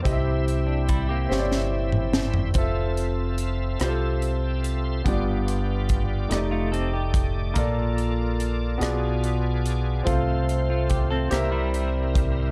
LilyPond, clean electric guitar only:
\new Staff \with { instrumentName = "Clean electric guitar" } { \time 6/8 \key f \major \tempo 4. = 48 r8. d'16 <g e'>16 <bes g'>4. r16 | r2. | r4. r16 <a f'>16 <c' a'>16 g'8. | r2. |
r8. <a f'>16 g'16 <c' a'>16 <bes g'>16 <g e'>4~ <g e'>16 | }